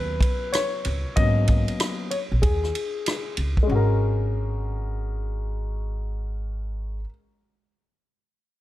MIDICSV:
0, 0, Header, 1, 4, 480
1, 0, Start_track
1, 0, Key_signature, 5, "minor"
1, 0, Tempo, 631579
1, 886, Time_signature, 4, 2, 24, 8
1, 6541, End_track
2, 0, Start_track
2, 0, Title_t, "Grand piano"
2, 0, Program_c, 0, 0
2, 0, Note_on_c, 0, 54, 55
2, 0, Note_on_c, 0, 59, 49
2, 0, Note_on_c, 0, 61, 57
2, 0, Note_on_c, 0, 70, 50
2, 0, Note_on_c, 0, 71, 96
2, 399, Note_on_c, 0, 73, 92
2, 424, Note_off_c, 0, 71, 0
2, 852, Note_off_c, 0, 73, 0
2, 870, Note_off_c, 0, 54, 0
2, 875, Note_off_c, 0, 59, 0
2, 880, Note_off_c, 0, 61, 0
2, 881, Note_on_c, 0, 75, 93
2, 882, Note_on_c, 0, 54, 52
2, 884, Note_on_c, 0, 58, 46
2, 886, Note_on_c, 0, 59, 42
2, 891, Note_on_c, 0, 61, 56
2, 1094, Note_off_c, 0, 70, 0
2, 1574, Note_off_c, 0, 54, 0
2, 1575, Note_off_c, 0, 58, 0
2, 1576, Note_off_c, 0, 59, 0
2, 1579, Note_off_c, 0, 61, 0
2, 1600, Note_on_c, 0, 73, 73
2, 1626, Note_off_c, 0, 75, 0
2, 1655, Note_off_c, 0, 73, 0
2, 1839, Note_on_c, 0, 68, 72
2, 2532, Note_off_c, 0, 68, 0
2, 2757, Note_on_c, 0, 56, 67
2, 2790, Note_on_c, 0, 61, 58
2, 2820, Note_on_c, 0, 66, 58
2, 2854, Note_on_c, 0, 70, 74
2, 5296, Note_off_c, 0, 56, 0
2, 5329, Note_off_c, 0, 61, 0
2, 5359, Note_off_c, 0, 66, 0
2, 5393, Note_off_c, 0, 70, 0
2, 6541, End_track
3, 0, Start_track
3, 0, Title_t, "Upright bass"
3, 0, Program_c, 1, 32
3, 0, Note_on_c, 1, 39, 82
3, 142, Note_off_c, 1, 39, 0
3, 650, Note_on_c, 1, 37, 85
3, 783, Note_off_c, 1, 37, 0
3, 890, Note_on_c, 1, 32, 88
3, 1237, Note_off_c, 1, 32, 0
3, 1761, Note_on_c, 1, 34, 78
3, 1839, Note_off_c, 1, 34, 0
3, 1847, Note_on_c, 1, 39, 86
3, 2061, Note_off_c, 1, 39, 0
3, 2568, Note_on_c, 1, 37, 78
3, 2702, Note_off_c, 1, 37, 0
3, 2809, Note_on_c, 1, 32, 85
3, 5347, Note_off_c, 1, 32, 0
3, 6541, End_track
4, 0, Start_track
4, 0, Title_t, "Drums"
4, 156, Note_on_c, 9, 36, 98
4, 169, Note_on_c, 9, 51, 61
4, 232, Note_off_c, 9, 36, 0
4, 245, Note_off_c, 9, 51, 0
4, 406, Note_on_c, 9, 44, 50
4, 406, Note_on_c, 9, 51, 67
4, 418, Note_on_c, 9, 37, 95
4, 482, Note_off_c, 9, 44, 0
4, 482, Note_off_c, 9, 51, 0
4, 494, Note_off_c, 9, 37, 0
4, 643, Note_on_c, 9, 51, 54
4, 719, Note_off_c, 9, 51, 0
4, 886, Note_on_c, 9, 51, 63
4, 888, Note_on_c, 9, 36, 101
4, 962, Note_off_c, 9, 51, 0
4, 964, Note_off_c, 9, 36, 0
4, 1122, Note_on_c, 9, 51, 52
4, 1130, Note_on_c, 9, 36, 90
4, 1198, Note_off_c, 9, 51, 0
4, 1206, Note_off_c, 9, 36, 0
4, 1277, Note_on_c, 9, 51, 38
4, 1353, Note_off_c, 9, 51, 0
4, 1366, Note_on_c, 9, 44, 44
4, 1366, Note_on_c, 9, 51, 61
4, 1372, Note_on_c, 9, 37, 104
4, 1442, Note_off_c, 9, 44, 0
4, 1442, Note_off_c, 9, 51, 0
4, 1448, Note_off_c, 9, 37, 0
4, 1606, Note_on_c, 9, 51, 49
4, 1682, Note_off_c, 9, 51, 0
4, 1846, Note_on_c, 9, 36, 81
4, 1846, Note_on_c, 9, 51, 60
4, 1922, Note_off_c, 9, 36, 0
4, 1922, Note_off_c, 9, 51, 0
4, 2003, Note_on_c, 9, 37, 32
4, 2079, Note_off_c, 9, 37, 0
4, 2090, Note_on_c, 9, 51, 56
4, 2166, Note_off_c, 9, 51, 0
4, 2327, Note_on_c, 9, 44, 48
4, 2327, Note_on_c, 9, 51, 67
4, 2339, Note_on_c, 9, 37, 92
4, 2403, Note_off_c, 9, 44, 0
4, 2403, Note_off_c, 9, 51, 0
4, 2415, Note_off_c, 9, 37, 0
4, 2561, Note_on_c, 9, 51, 47
4, 2637, Note_off_c, 9, 51, 0
4, 2715, Note_on_c, 9, 36, 71
4, 2791, Note_off_c, 9, 36, 0
4, 6541, End_track
0, 0, End_of_file